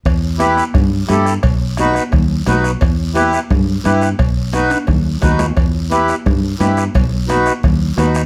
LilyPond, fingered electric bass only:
\new Staff \with { instrumentName = "Fingered electric bass" } { \clef bass \time 4/4 \key e \minor \tempo 4 = 174 e,2 g,4 g,4 | b,,2 dis,4 b,,4 | e,2 g,4 g,4 | b,,2 dis,4 dis,4 |
e,2 g,4 g,4 | b,,2 dis,4 dis,4 | }